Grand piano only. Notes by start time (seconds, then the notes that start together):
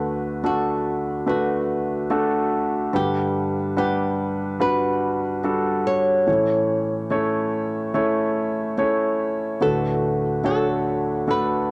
Already playing: D2 D3 A3 D4 F#4 B4
0.44 A3 D4 F#4 A4
1.26 A3 D4 F#4 B4
2.10 A3 D4 F#4 A4
2.93 G2 D3 G3 D4 B4 F#5
3.77 G3 D4 B4 F#5
4.60 G3 D4 F#4 B4
5.44 G3 D4 F#4 A4
6.26 A2 E3 A3 C#4 E4 C#5
7.10 A3 C#4 E4 C#5
7.94 A3 C#4 E4 C#5
8.78 A3 C#4 E4 C#5
9.61 D2 A2 A3 D4 F#4 B4
10.44 A3 D4 F#4 C#5
11.28 A3 D4 F#4 A4